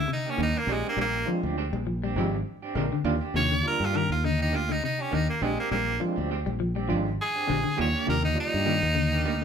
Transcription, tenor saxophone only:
0.13 D#4
0.30 C#4
0.43 D#4
0.58 A#3
0.72 G#3
0.89 A#3
1.01 A#3
3.36 C#5
3.68 A#4
3.85 F4
3.96 A#4
4.12 F4
4.25 D#4
4.42 D#4
4.56 F4
4.72 D#4
4.85 D#4
5.01 C#4
5.14 D#4
5.30 A#3
5.43 G#3
5.60 A#3
5.71 A#3
7.22 G#4
7.81 C#5
8.10 A#4
8.25 D#4
8.40 D#4

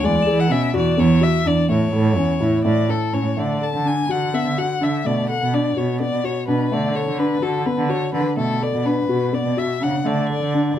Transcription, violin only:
0.05 D5
0.40 F#5
0.51 E5
0.76 D5
1.00 C#5
1.23 E5
1.47 D5
1.71 C#5
2.65 D5
2.89 A4
3.13 C#5
3.38 D5
3.63 A5
3.87 G#5
4.11 F#5
4.35 E5
4.58 F#5
4.83 E5
5.06 D5
5.30 F#5
5.54 D5
5.77 C#5
6.01 D5
6.25 C#5
6.48 B4
6.72 D5
6.95 C#5
7.19 B4
7.42 A4
7.66 B4
7.90 C#5
8.14 B4
8.38 A4
8.62 D5
8.86 B4
9.34 D5
9.58 E5
9.83 F#5
10.07 D5
10.31 D5

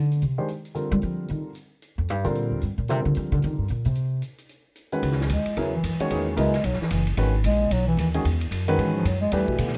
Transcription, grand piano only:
0.38 D#3 G#3 D4 G4 C5
0.75 D3 G3 C4 F4 A#4
2.24 D3 G3 C4 F4 A#4
2.89 D3 G3 C4 F4 A#4
4.92 D#3 G#3 C#4 F#4 B4
5.57 C#3 F#3 B3 E4 A#4
6.00 D#3 G#3 C#4 F#4 C#5
6.11 E3 A#3 D#4 G#4 C#5
6.37 C#3 F#3 B3 E4 A#4
7.18 D#3 G#3 C#4 F#4 B4
8.15 D#3 G#3 C#4 F#4 G#4
8.68 D#3 G#3 C#4 F#4 B4
9.33 E3 A3 D4 G4 B4

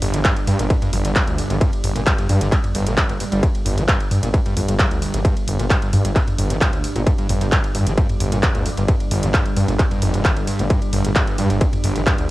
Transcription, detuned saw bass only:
0.02 G1
0.14 G1
0.48 G2
0.59 G1
0.93 G1
1.05 G1
1.28 D2
1.50 G1
1.84 G1
1.96 G1
2.29 G2
2.41 G1
2.75 G1
2.87 G1
3.09 G1
3.32 G1
3.66 G1
3.78 G1
4.11 G2
4.23 G1
4.57 G1
4.68 G1
4.91 D2
5.14 G1
5.48 G1
5.60 G1
5.93 G2
6.05 G1
6.39 G1
6.50 G1
6.73 D2
6.96 G1
7.29 G1
7.41 G1
7.75 G2
7.87 G1
8.20 G1
8.32 G1
8.55 D2
8.78 G1
9.11 G1
9.23 G1
9.57 G2
9.68 G1
10.02 G1
10.14 F1
10.37 G1
10.59 G1
10.93 G1
11.05 G1
11.39 G2
11.50 G1
11.84 G1
11.96 G1
12.18 D2

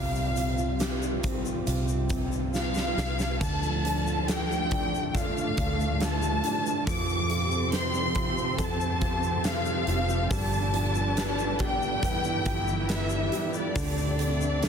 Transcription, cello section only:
3.40 F2 F3
5.15 A2 A3
6.87 C3 C4
10.31 D3 D4
12.03 E3 E4
13.76 D3 D4

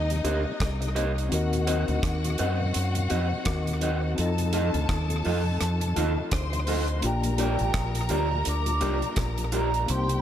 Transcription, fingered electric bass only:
Already playing: D#2
0.25 D2
0.61 C2
1.32 D#2
1.89 D2
2.04 D#2
2.40 F#2
2.76 F#2
3.11 F2
3.47 D#2
4.19 F2
4.75 D2
4.90 D#2
5.26 F2
5.61 F2
5.97 D#2
6.33 D2
7.04 A#1
7.61 A1
7.75 A#1
8.11 D2
8.47 D2
8.82 C2
9.18 A#1
9.90 C2

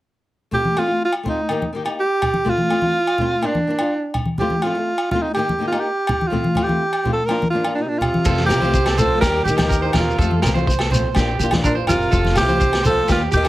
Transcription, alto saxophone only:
0.54 G4
0.79 F4
1.05 F4
1.29 D#4
2.00 G4
2.50 F4
3.46 D4
4.39 G4
4.63 F4
5.11 F4
5.22 D#4
5.34 G4
5.67 F4
5.80 G4
6.27 F4
6.63 G4
7.13 A4
7.26 A#4
7.50 F4
7.75 D4
7.82 D#4
7.88 D4
7.98 F4
8.46 G4
8.99 A4
9.21 A#4
9.44 G4
9.95 F4
11.65 D4
11.88 F4
12.37 G4
12.86 A4
13.12 F4
13.34 G4

